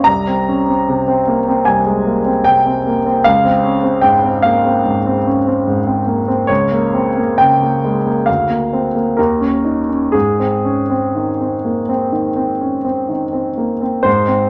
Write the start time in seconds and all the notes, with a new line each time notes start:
0.04 C2 A#5
0.27 C4
0.48 C#4
0.69 C4
0.89 C3
1.08 C4
1.28 A#3
1.48 C4
1.65 C2 G#5
1.86 G#3
2.07 A#3
2.26 C4
2.44 C3 G5
2.66 C4
2.87 A#3
3.06 C4
3.24 C#2 F5
3.45 C4
3.63 C#4
3.83 C4
4.01 G#2 G5
4.24 C4
4.42 A#3 F5
4.66 C4
4.86 G#2
5.06 C4
5.27 C#4
5.47 C4
5.67 G#2
5.87 C4
6.07 A#3
6.28 C4
6.47 C#2 C#5
6.72 A#3
6.94 C4
7.18 A#3
7.38 C#3 G5
7.63 A#3
7.85 G#3
8.06 A#3
8.26 D2 F5
8.50 A#3
8.73 C4
8.95 A#3
9.17 D#2 A#4
9.41 C#4
9.65 D#4
9.89 C#4
10.12 G#2 G#4
10.40 C4
10.65 C#4
10.90 C4
11.15 D#3
11.41 C4
11.65 A#3
11.89 C4
12.12 D#3
12.37 C4
12.61 C#4
12.85 C4
13.09 D#3
13.33 C4
13.58 A#3
13.81 C4
14.03 G#2 C5
14.28 C4